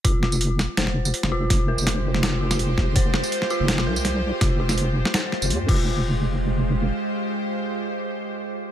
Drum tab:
CC |----------------|----------------|----------------|--------------x-|
HH |x---x---x---x---|x---x---x---x---|x---x---x---x---|x---x---x---x---|
TB |---x--x----x----|---x-------x----|---x--x----x----|---x-------x----|
SD |--o---o-oo---o--|o---o--oo--o--o-|--o--o--oo--o---|o--o---oo-o-----|
BD |o---------------|o-------------o-|o---------------|o-------------o-|

CC |----------------|----------------|
HH |----------------|----------------|
TB |----------------|----------------|
SD |----------------|----------------|
BD |----------------|----------------|